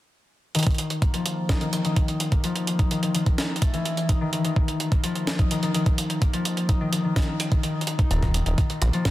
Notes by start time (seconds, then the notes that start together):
0.55 D#3, closed hi-hat
0.59 closed hi-hat
0.63 D#3, kick, closed hi-hat
0.67 closed hi-hat
0.74 closed hi-hat
0.78 closed hi-hat
0.90 closed hi-hat
1.02 A#3, kick, closed hi-hat
1.14 F3, closed hi-hat
1.26 closed hi-hat
1.49 D#4, kick, snare, closed hi-hat
1.61 D#3, closed hi-hat
1.73 D#3, closed hi-hat
1.85 D#3, closed hi-hat
1.96 D#3, kick, closed hi-hat
2.08 closed hi-hat
2.20 closed hi-hat
2.32 A#3, kick, closed hi-hat
2.44 F3, closed hi-hat
2.56 closed hi-hat
2.67 closed hi-hat
2.79 D#4, kick, closed hi-hat
2.91 D#3, closed hi-hat
3.03 D#3, closed hi-hat
3.15 D#3, closed hi-hat
3.26 D#3, kick, closed hi-hat
3.38 snare, closed hi-hat
3.56 closed hi-hat
3.62 A3, kick, closed hi-hat
3.74 E3, closed hi-hat
3.85 closed hi-hat
3.97 closed hi-hat
4.09 D#4, kick, closed hi-hat
4.21 D#3
4.33 D#3, closed hi-hat
4.45 D#3, closed hi-hat
4.56 D#3, kick
4.68 closed hi-hat
4.80 closed hi-hat
4.92 A#3, kick, closed hi-hat
5.04 F3, closed hi-hat
5.15 closed hi-hat
5.27 snare, closed hi-hat
5.39 D#4, kick, closed hi-hat
5.51 D#3, closed hi-hat
5.63 D#3, closed hi-hat
5.75 D#3, closed hi-hat
5.86 D#3, kick, closed hi-hat
5.98 closed hi-hat
6.10 closed hi-hat
6.22 A#3, kick, closed hi-hat
6.34 F3, closed hi-hat
6.45 closed hi-hat
6.57 closed hi-hat
6.69 D#4, kick, closed hi-hat
6.81 D#3
6.93 D#3, closed hi-hat
7.04 D#3
7.16 D#3, kick, snare, closed hi-hat
7.22 closed hi-hat
7.40 closed hi-hat
7.52 D#3, kick, closed hi-hat
7.63 D#3, closed hi-hat
7.81 closed hi-hat
7.87 closed hi-hat
7.99 D#4, kick, closed hi-hat
8.11 D#1 A#2, closed hi-hat
8.22 D#3, kick, cross-stick, closed hi-hat
8.34 D#3, closed hi-hat
8.46 D#1 D#3, closed hi-hat
8.58 kick, closed hi-hat
8.70 closed hi-hat
8.82 A#1 A#3, cross-stick, closed hi-hat
8.93 F3, closed hi-hat
9.05 kick, snare, closed hi-hat